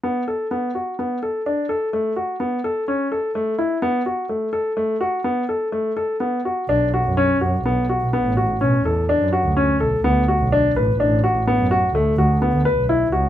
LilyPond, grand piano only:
\new Staff \with { instrumentName = "Grand piano" } { \time 7/4 \key b \minor \tempo 4 = 126 b8 a'8 b8 fis'8 b8 a'8 d'8 a'8 a8 fis'8 b8 a'8 cis'8 a'8 | a8 e'8 b8 fis'8 a8 a'8 a8 fis'8 b8 a'8 a8 a'8 b8 fis'8 | d'8 fis'8 cis'8 fis'8 b8 fis'8 b8 fis'8 cis'8 a'8 d'8 fis'8 cis'8 a'8 | b8 fis'8 d'8 b'8 d'8 fis'8 b8 fis'8 a8 fis'8 b8 b'8 e'8 fis'8 | }